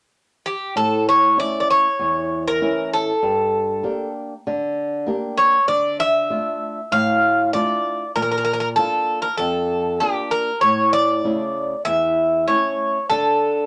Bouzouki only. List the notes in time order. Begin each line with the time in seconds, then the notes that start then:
0.46 G4
0.77 A4
1.09 C#5
1.40 D5
1.60 D5
1.70 C#5
2.48 A#4
2.93 A4
5.38 C#5
5.68 D5
6.00 E5
6.92 F5
7.53 D5
8.16 A#4
8.22 A#4
8.31 A#4
8.38 A#4
8.45 A#4
8.53 A#4
8.60 A#4
8.76 A4
9.22 A#4
9.37 A4
10.00 G4
10.31 A#4
10.61 C#5
10.93 D5
11.85 E5
12.48 C#5
13.10 A4